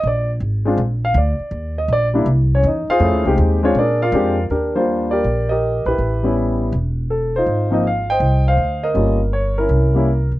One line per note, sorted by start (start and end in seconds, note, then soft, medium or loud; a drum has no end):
0.03 0.40 A#1 medium
0.03 0.30 D5 medium
0.40 0.77 G#1 medium
0.65 0.77 G#3 medium
0.65 0.77 C4 medium
0.65 0.78 D4 medium
0.65 0.78 F4 medium
0.77 1.14 A#1 medium
1.05 1.16 F5 medium
1.14 1.38 D2 loud
1.14 1.74 D5 medium
1.39 muted upright bass stroke soft
1.51 1.88 D#2 medium
1.78 1.90 D#5 medium
1.88 2.25 A#1 medium
1.93 2.06 D5 medium
2.14 2.25 G3 medium
2.14 2.26 A#3 medium
2.14 2.26 D4 medium
2.14 2.26 E4 medium
2.26 2.62 C2 medium
2.55 2.65 C#4 medium
2.55 2.65 C#5 medium
2.63 2.87 E2 medium
2.63 2.89 D#5 medium
2.68 2.90 D#4 medium
2.88 3.36 F4 medium
2.88 3.00 G#4 medium
2.88 3.36 C5 medium
2.88 3.36 F5 loud
2.88 muted upright bass stroke soft
3.00 3.13 F2 medium
3.00 3.23 A3 medium
3.00 3.23 C#4 medium
3.00 3.23 E4 medium
3.00 3.24 G#4 medium
3.13 3.25 D#2 medium
3.25 3.37 C2 medium
3.25 3.58 G#3 medium
3.25 3.58 C4 medium
3.25 3.59 D#4 medium
3.25 3.59 G4 medium
3.38 3.74 D#2 medium
3.63 3.74 G#3 medium
3.63 3.75 C4 medium
3.63 3.77 C#4 medium
3.63 3.75 D4 medium
3.63 3.75 F4 medium
3.63 3.76 C#5 medium
3.75 4.11 A#2 medium
3.79 4.02 D4 medium
3.79 4.01 G#4 medium
3.79 4.01 A#4 medium
3.79 4.01 D5 medium
4.02 4.42 F4 medium
4.02 4.42 A#4 medium
4.02 4.42 D5 medium
4.02 4.42 F5 medium
4.12 4.49 F2 medium
4.12 4.35 G#3 medium
4.12 4.35 C4 medium
4.12 4.36 D4 medium
4.12 4.36 G4 medium
4.50 5.21 D#2 medium
4.50 4.74 D4 soft
4.50 4.75 G4 medium
4.50 4.73 A#4 medium
4.75 5.22 G3 medium
4.75 5.22 A#3 medium
4.75 5.23 D4 medium
4.75 5.23 F4 medium
4.75 5.11 G4 soft
4.75 5.10 C5 medium
5.11 5.50 G4 medium
5.11 5.50 A#4 medium
5.11 5.50 D5 medium
5.24 5.82 A#1 medium
5.49 5.87 G4 medium
5.49 5.97 A#4 medium
5.49 5.84 D#5 medium
5.86 5.98 A#1 medium
5.86 6.24 E4 soft
5.86 6.58 G4 medium
5.86 6.33 B4 medium
5.98 6.69 A1 medium
6.23 6.71 G3 medium
6.23 6.71 B3 medium
6.23 6.71 C#4 medium
6.23 6.72 E4 medium
6.72 7.43 E1 medium
7.10 7.36 A4 medium
7.36 7.71 D#4 medium
7.36 8.07 F4 medium
7.36 7.70 C5 medium
7.46 8.18 G#1 medium
7.71 7.83 F3 medium
7.71 7.83 A#3 medium
7.71 7.83 C4 medium
7.71 7.84 D#4 medium
7.71 7.85 D#5 medium
7.87 8.09 F5 medium
8.10 8.47 C5 medium
8.10 8.80 D#5 medium
8.10 8.44 G5 loud
8.20 8.56 C2 medium
8.48 8.94 C5 medium
8.48 8.86 F5 medium
8.57 8.93 D2 medium
8.83 9.54 A#4 medium
8.83 9.18 D#5 medium
8.94 9.66 G1 medium
8.94 9.17 G3 medium
8.94 9.17 A#3 soft
8.94 9.18 C#4 medium
8.94 9.18 F4 medium
9.33 9.56 C#5 medium
9.58 9.94 C#4 medium
9.58 9.95 E4 medium
9.58 10.28 A#4 medium
9.69 10.28 C2 medium
9.94 10.06 G3 medium
9.94 10.07 A#3 medium
9.94 10.07 C#4 medium
9.94 10.07 E4 medium
10.32 10.39 C3 medium